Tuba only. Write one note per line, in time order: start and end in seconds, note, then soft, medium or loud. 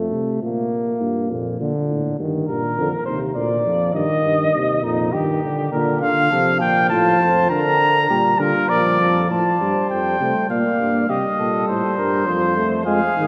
0.00 0.14 F2 medium
0.13 0.42 C3 medium
0.42 1.03 A#2 medium
1.01 1.32 G2 medium
1.30 1.59 F2 medium
1.60 1.73 A#2 medium
1.90 2.18 A2 medium
2.19 2.48 G2 medium
2.49 2.62 G2 medium
2.78 2.91 F2 medium
3.07 3.35 D#2 medium
3.36 3.49 D2 medium
3.65 3.94 F2 medium
3.94 4.08 G2 medium
4.25 4.53 G2 medium
4.54 4.83 D#2 medium
4.84 5.12 F2 medium
5.13 5.51 G2 medium
5.72 6.04 A#2 medium
6.03 6.31 D3 medium
6.32 6.62 C3 medium
6.61 6.92 A#2 medium
6.90 7.19 A2 medium
7.20 7.49 F2 medium
7.50 8.09 D3 medium
8.09 8.39 A#2 medium
8.39 8.53 D3 medium
8.70 9.00 A#2 medium
9.00 9.30 F2 medium
9.30 9.44 A2 medium
9.61 9.74 G2 medium
9.90 10.20 F2 medium
10.20 10.34 C3 medium
10.50 10.64 A#2 medium
10.80 11.09 G2 medium
11.10 11.23 C3 medium
11.40 11.68 A#2 medium
11.69 11.82 A2 medium
11.98 12.27 G2 medium
12.27 12.85 F2 medium
12.86 13.00 F2 medium
13.16 13.27 G#2 medium